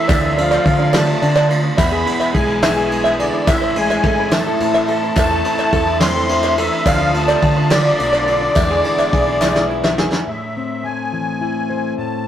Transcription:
Already playing: A1 A2 E3 A3 C4 E4 C5 D5 E5
0.08 D2 D3 A3 C4 D4 F4 C5 D5, kick, clap, ride, tambourine
0.23 F4
0.37 F3 A3 D4 F4 C5 F5, ride
0.51 D5, clap
0.65 D3 A3 D4 F4 C5 D5, kick, ride
0.79 D4
0.93 D3 A3 C4 D4 F4 C5 D5 A5, snare, clap, ride, tambourine
1.07 F4
1.22 D3 A3 D4 F4 C5 D5, ride
1.36 D5, clap, tambourine
1.49 A3 C4 D4 F4 C5 D5, clap, ride
1.64 D4, tambourine
1.77 E2 B2 E3 G#3 B3 E4 G#4 B4 E5 B5, kick, clap, ride, tambourine
1.92 G#4
2.06 G#3 B3 E4 B4 D5, clap, ride
2.20 E5, clap, tambourine
2.34 B1 E3 G#3 B3 E4 G#4 B4 D5 G#5, kick, ride
2.47 E4, clap
2.62 E2 B2 E3 G#3 B3 E4 B4 E5 G#5, snare, clap, ride, tambourine
2.76 G#4
2.90 G#3 B3 E4 B4 E5, ride
3.04 E5, clap
3.19 D3 E3 G#3 B3 E4 G#4 B4 D5 E5, ride, tambourine
3.33 E4
3.46 A1 A2 E3 A3 C4 E4 C5 E5, kick, clap, ride, tambourine
3.62 C5
3.75 G#3 A3 C4 E4 C5 D5 G#5, ride
3.90 E5, clap
4.03 A2 E3 A3 C4 E4 A4 C5 E5, kick, ride
4.19 E4
4.31 A2 E3 A3 C4 E4 C5 E5 A5, snare, clap, ride, tambourine
4.47 A4
4.59 A2 A3 C4 E4 C5 E5, ride
4.74 E5, clap, tambourine
4.87 A3 C4 E4 A4 C5 E5 A5, clap, ride
5.03 E4, tambourine
5.16 A1 E2 A2 E3 A3 C4 E4 C5 E5 A5, kick, clap, ride, tambourine
5.31 A4
5.44 A3 C4 E4 C5, ride
5.59 E5, clap
5.71 E2 E3 A3 C4 E4 A4 C5 E5, kick, ride
5.87 E4
6.00 A2 E3 A3 C4 E4 C5 D5 E5 C6, snare, clap, ride, tambourine
6.15 A4
6.29 A3 C4 E4 C5 D5, ride
6.43 E5, clap, tambourine
6.56 E3 A3 C4 E4 A4 C5 D5 E5, ride
6.72 E4, tambourine
6.85 D2 D3 F3 A3 C4 D4 F4 C5 D5 F5, kick, clap, ride, tambourine
7.00 F4
7.14 A3 D4 F4 C5 F5 A5, ride
7.28 D5, clap
7.42 D3 A3 C4 D4 F4 C5, kick, ride
7.57 D4
7.70 D3 A3 C4 D4 F4 C5 D5, snare, clap, ride, tambourine
7.85 F4
7.99 B1 A3 D4 F4 C5 F5, ride
8.13 D5, clap, tambourine
8.26 A3 D4 F4 C5, clap, ride
8.41 D4, tambourine
8.55 E2 B2 E3 G#3 B3 E4 G#4 B4 E5, kick, clap, ride, tambourine
8.70 G#4
8.84 G#3 B3 E4 B4 E5, ride, tambourine
8.99 E5, clap, tambourine
9.13 B1 E3 G#3 B3 E4 G#4 B4 E5, kick, ride, tambourine
9.27 E4, tambourine
9.41 E2 B2 E3 G#3 B3 E4 B4 E5, snare, clap, tambourine
9.55 G#4, snare, tambourine
9.70 G#3 B3 E4 B4 E5, tambourine
9.84 E5, snare, clap
9.97 E3 G#3 B3 E4 G#4 B4 D5, snare, tambourine
10.12 E4, snare
10.27 A2 E5
10.57 C4
10.84 A3 G#5
11.13 E3
11.41 E4
11.70 C5
11.98 A2 A5

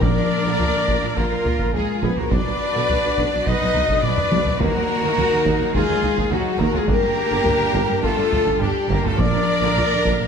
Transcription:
0.00 A#1 A#2 D3 A#3 D4 A#4 D5 D6, taiko
0.05 A#1
0.16 A#1 F3
0.45 A#1 D3
0.59 A#1 F3, taiko low
0.74 A#1 D3
0.88 A#1 D3, taiko
1.01 A#1 F3
1.16 A#1 D3 A#3 F4 A#4 A#5, taiko
1.31 A#1 F3
1.44 A#1 D3, taiko low
1.58 A#1 D3, taiko
1.73 A#1 F3 G#3 F4 G#4 G#5, taiko low
2.02 A#1 D3 B3 G#4 B4 B5, taiko
2.16 A#1 F3 A#3 F#4 A#4 A#5, taiko low
2.21 A#4
2.31 B1 D3 D4 F#4 B4 D5 D6, taiko
2.35 D5
2.46 B1 F#3
2.75 B1 D3
2.89 B1 F#3, taiko low
3.03 B1 D3
3.18 B1 D3, taiko
3.34 B1 F#3
3.45 B1 D3 D#4 B4 D#5 D#6, taiko
3.61 B1 F#3
3.75 B1 D3, taiko low
3.89 B1 D3, taiko
4.02 B1 D4 B4 D5 D6, taiko mid
4.06 F#3
4.18 taiko low-mid
4.31 B1 D3, taiko high
4.46 B1 F#3, taiko low
4.59 D#2 D#3 A#3 F#4 A#4 A#5, taiko
4.64 D#3 D#4
4.74 D#2 F#3
5.02 D#2
5.06 D#3
5.17 D#2 F#3, taiko low
5.31 D#2 D#3
5.45 D#2 D#3, taiko
5.60 D#2 F#3
5.73 D#2 D#3 G#3 F4 G#4 G#5, taiko
5.89 D#2 F#3
6.02 D#2 D#3, taiko low
6.16 D#2 D#3, taiko
6.30 D#2 F#3 D#4 F#4 F#5, taiko low
6.58 D#2 D#3 A#3 F#4 A#4 A#5, taiko
6.62 A#4
6.72 D#2 F#3 G#3 F4 G#4 G#5, taiko low
6.77 G#4
6.86 G1 D3 A#3 D4 G4 A#4 A#5, taiko
6.90 G4 A#4
7.02 G1 G3
7.30 G1 D3
7.43 G1 G3, taiko low
7.58 G1 D3
7.71 G1 D3, taiko
7.87 G1 G3
8.02 G1 D3 A3 F4 A4 A5, taiko
8.16 G1 G3
8.31 G1 D3, taiko low
8.45 G1 D3, taiko
8.59 G1 G3 D4 G4 G5, taiko low
8.89 G1 D3 A#3 G4 A#4 A#5, taiko
9.04 G1 G3 A3 F4 A4 A5, taiko low
9.17 A#1 A#2 D3 A#3 D4 A#4 D5 D6, taiko
9.21 A#4
9.32 A#1 F3
9.61 A#1 D3
9.75 A#1 F3, taiko low
9.90 A#1 D3
10.05 A#1 D3, taiko
10.19 A#1 F3

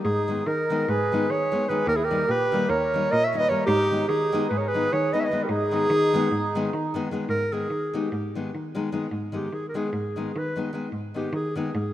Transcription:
0.04 G#2 D#4 G#4
0.28 D#3 G#3 B3 D#4
0.47 D#3 D#4 A#4
0.70 D#3 G#3 B3 D#4
0.88 G#2 G#4 B4
1.12 D#3 G#3 B3 D#4
1.30 D#3 G#4 C#5
1.52 D#3 G#3 B3 D#4
1.69 D#3 G#3 B3 D#4 G#4 B4
1.86 D#2 G4 A#4
1.95 E4 G#4
2.03 G4 A#4
2.11 D#3 G3 A#3 D#4
2.28 A#2 G4 B4
2.52 D#3 G3 A#3 D#4
2.69 D#2 A#4 C#5
2.94 D#3 G3 A#3 D#4
3.11 A#2 A#4 D#5
3.24 C#5 E5
3.33 D#3 G3 A#3 D#4
3.38 B4 D#5
3.49 D#3 G3 A#3 D#4 A#4 C#5
3.66 G#2 D#4 G4
3.91 D#3 G#3 B3 D#4
4.08 D#3 D#4 G#4
4.32 D#3 G#3 B3 D#4
4.49 G#2 G#4 B4
4.58 A#4 C#5
4.67 G#4 B4
4.74 D#3 G#3 B3 D#4
4.93 D#3 G#4 C#5
5.13 D#3 G#3 B3 D#4 B4 D#5
5.20 C#5 E5
5.25 B4 D#5
5.31 D#3 G#3 B3 D#4
5.43 G4 A#4
5.48 G#2 D#4 G#4
5.71 D#3 G#3 B3 D#4
5.90 D#3
6.13 D#3 G#3 B3 D#4
6.31 G#2
6.55 D#3 G#3 B3 D#4
6.73 D#3
6.94 D#3 G#3 B3 D#4
7.11 D#3 G#3 B3 D#4
7.29 G#2 A#4
7.52 D#3 G#3 B3 D#4 G#4
7.70 D#3
7.94 D#3 G#3 B3 D#4 G4
8.12 G#2
8.35 D#3 G#3 B3 D#4
8.54 D#3
8.75 D#3 G#3 B3 D#4
8.92 D#3 G#3 B3 D#4
9.11 G#2
9.32 D#3 G#3 B3 D#4 G4
9.52 D#3 G#4
9.69 A#4
9.74 D#3 G#3 B3 D#4 G#4
9.93 G#2
10.16 D#3 G#3 B3 D#4
10.36 D#3 B4
10.56 D#3 G#3 B3 D#4
10.73 D#3 G#3 B3 D#4
10.92 G#2
11.14 D#3 G#3 B3 D#4 G4
11.33 D#3 G#4
11.56 D#3 G#3 B3 D#4 G#4
11.74 G#2

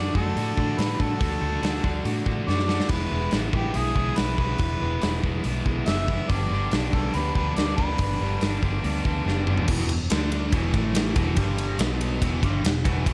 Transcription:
Already playing: D3 A3 D4 F#4 D5
0.15 F#2 D3 A3 D4 F#4 A4, kick
0.36 A2 D3 A3 D4 F#4, open hi-hat
0.57 A2 D3 A3 D4 F#4, kick
0.78 A2 D3 A3 D4 F#4 B4, snare, open hi-hat
0.99 A2 D3 A3 D4 F#4 A4, kick
1.20 D2 D3 A3 D4 F#4, kick, open hi-hat
1.41 D2 D3 A3 D4 F#4
1.61 D2 D3 A3 D4 F#4, snare, open hi-hat
1.82 D2 D3 A3 D4 F#4, kick
2.04 A2 D3 A3 D4 F#4, open hi-hat
2.25 A2 D3 A3 D4 F#4, kick
2.47 F#2 D3 A3 D4 F#4 D5, snare
2.59 snare
2.68 D3 A3 D4 F#4, snare
2.80 snare
2.89 E1 E3 G#3 B3 E4 B4, kick, open hi-hat, splash
3.10 E1 E3 G#3 B3 E4
3.31 A1 E3 G#3 B3 E4, snare, open hi-hat
3.53 A1 E3 G#3 B3 E4 G4, kick
3.74 B1 E3 G#3 B3 E4 G#4, open hi-hat
3.95 B1 E3 G#3 B3 E4, kick
4.16 B1 E3 G#3 B3 E4 B4, snare, open hi-hat
4.38 B1 E3 G#3 B3 E4 B4, kick
4.58 E1 E3 G#3 B3 E4, kick, open hi-hat
4.80 E1 E3 G#3 B3 E4
5.01 E1 E3 G#3 B3 E4, snare, open hi-hat
5.23 E1 E3 G#3 B3 E4, kick
5.44 B1 E3 G#3 B3 E4, open hi-hat
5.65 B1 E3 G#3 B3 E4, kick
5.86 F#1 E3 G#3 B3 E4 E5, snare, open hi-hat
6.07 E3 G#3 B3 E4, kick
6.29 G1 G2 D3 G3 B3 D4 D5, kick, open hi-hat
6.51 G1 G2 D3 G3 B3 D4
6.71 B1 G2 D3 G3 B3 D4, snare, open hi-hat
6.93 B1 G2 D3 G3 B3 D4 A4, kick
7.14 D2 G2 D3 G3 B3 D4 B4, open hi-hat
7.35 D2 G2 D3 G3 B3 D4 B4, kick
7.56 D2 G2 D3 G3 B3 D4 D5, snare, open hi-hat
7.77 D2 G2 D3 G3 B3 D4 B4, kick
7.98 G1 G2 D3 G3 B3 D4, kick, open hi-hat
8.21 G1 G2 D3 G3 B3 D4
8.41 G1 G2 D3 G3 B3 D4, snare, open hi-hat
8.62 G1 G2 D3 G3 B3 D4, kick
8.83 D2 G2 D3 G3 B3 D4, open hi-hat
9.05 D2 G2 D3 G3 B3 D4, kick
9.26 F#1 G2 D3 G3 B3 D4, snare
9.47 G2 D3 G3 B3 D4, mid tom
9.57 floor tom
9.68 E1 E2 B2 E3, kick, crash
9.89 E1 E2 B2, ride
10.10 D2 D3 A3 D4, snare, ride
10.32 ride
10.52 E1 E2 B2 E3, kick, ride
10.74 A1 A2 E3 A3, kick, ride
10.95 snare, ride
11.16 E1 E2 B2 E3, kick, ride
11.37 G1 G2 D3 G3, kick, ride
11.58 ride
11.79 B1 B2 F#3 B3, snare, ride
12.01 ride
12.21 E1 E2 B2 E3, kick, ride
12.43 G1 G2 D3 G3, kick, ride
12.64 E1 E2 B2, snare, ride
12.84 E1 E2 B2 E3, kick, ride
13.06 E1 E2 B2 E3, kick, ride

